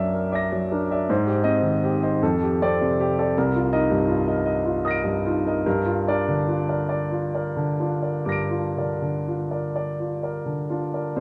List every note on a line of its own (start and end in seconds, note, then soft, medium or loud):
0.00 1.05 F#2 medium
0.00 0.52 F#3 soft
0.00 0.72 D4 soft
0.00 0.14 A#4 soft
0.00 0.33 D5 medium
0.00 0.33 E5 medium
0.14 0.45 A#4 soft
0.32 0.51 D5 soft
0.32 0.51 E5 medium
0.32 1.05 D6 soft
0.32 1.06 A#6 soft
0.52 0.83 F#3 medium
0.71 1.09 D4 soft
0.71 1.02 A#4 soft
0.91 1.08 D5 soft
0.91 1.08 E5 medium
1.09 2.19 G#2 medium
1.09 1.39 C5 medium
1.27 1.57 G4 medium
1.44 2.06 C4 medium
1.44 1.62 C5 soft
1.44 1.62 D#5 medium
1.62 1.94 D#3 medium
1.84 2.14 G4 medium
2.03 2.20 C5 medium
2.03 2.20 D#5 medium
2.22 3.32 F2 medium
2.22 2.53 A4 medium
2.43 2.72 G4 medium
2.62 3.21 C4 medium
2.62 2.78 A4 medium
2.62 2.78 D5 medium
2.81 3.10 C3 medium
3.00 3.29 G4 medium
3.18 3.35 A4 medium
3.18 3.35 D5 medium
3.37 5.62 C2 medium
3.37 3.66 A#4 medium
3.55 3.84 F4 medium
3.73 4.31 D#4 medium
3.73 3.89 A#4 medium
3.73 3.89 D#5 medium
3.91 4.20 G2 medium
4.08 4.38 F4 medium
4.27 4.44 A#4 medium
4.27 4.44 D#5 medium
4.46 4.77 D#5 medium
4.65 4.97 F4 medium
4.85 5.03 A#4 soft
4.85 5.03 D#5 medium
4.85 5.61 D#6 soft
4.85 5.63 A#6 soft
4.91 5.64 D7 soft
5.04 5.36 G2 medium
5.26 5.66 D#4 soft
5.26 5.58 F4 medium
5.46 5.64 A#4 medium
5.46 5.65 D#5 medium
5.66 8.23 G2 medium
5.66 5.98 A#4 medium
5.86 6.18 F4 medium
6.07 6.73 D4 soft
6.07 6.25 A#4 soft
6.07 6.25 D5 medium
6.28 6.60 D3 medium
6.47 6.80 F4 soft
6.68 6.87 A#4 soft
6.68 6.87 D5 soft
6.89 7.24 D5 medium
7.11 7.46 F4 soft
7.34 7.54 A#4 soft
7.34 7.54 D5 soft
7.56 7.93 D3 soft
7.80 8.58 D4 soft
7.80 8.18 F4 soft
8.02 8.24 A#4 soft
8.02 8.25 D5 soft
8.25 11.14 G2 medium
8.25 8.67 A#4 soft
8.25 11.14 D6 soft
8.25 11.15 A#6 soft
8.32 11.17 D7 soft
8.50 8.92 F4 soft
8.77 9.00 D3 soft
8.77 9.00 A#4 soft
8.77 9.01 D5 soft
9.02 9.42 D3 soft
9.27 9.67 F4 soft
9.51 9.73 A#4 soft
9.51 9.74 D5 soft
9.76 10.14 D5 soft
10.00 10.38 F4 soft
10.23 10.45 A#4 soft
10.23 10.45 D5 soft
10.45 10.85 D3 soft
10.70 11.18 D4 soft
10.70 11.08 F4 soft
10.93 11.15 A#4 soft
10.93 11.15 D5 soft
11.16 11.20 C2 soft
11.16 11.20 C5 soft